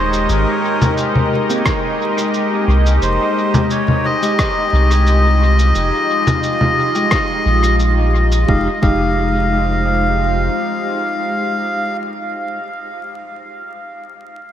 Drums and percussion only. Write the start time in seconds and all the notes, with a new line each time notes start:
0.13 shaker
0.29 shaker
0.82 low conga, shaker
0.97 shaker
1.15 low conga
1.50 shaker
1.66 kick, cross-stick, shaker
2.18 shaker
2.34 shaker
2.86 shaker
3.02 shaker
3.54 low conga, shaker
3.70 shaker
3.88 low conga
4.23 shaker
4.39 kick, cross-stick, shaker
4.91 shaker
5.07 shaker
5.59 shaker
5.75 shaker
6.27 low conga, shaker
6.43 shaker
6.61 low conga
6.95 shaker
7.11 kick, cross-stick, shaker
7.63 shaker
7.79 shaker
8.32 shaker
8.48 kick
8.83 kick